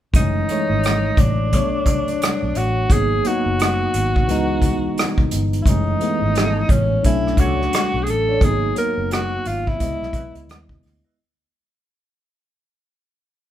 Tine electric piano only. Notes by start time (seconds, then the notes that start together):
0.13 E3 G#3 A3 C#4
0.48 E3 G#3 A3 C#5
1.52 C#3 F#3 A3 C#5
1.58 D4
2.89 F#3 A#3 B3 D#4
3.24 F#3 A#3 B3 D#4
4.27 E3 G#3 B3 D#4
5.65 E3 G#3 A3 C#4
6.00 E3 G#3 A3 B3
7.03 F#3 A3 C#4 D4
8.40 F#3 A#3 B3 D#4
8.75 F#3 A#3 B3 F#4
9.78 G#3 B3 E4 D#5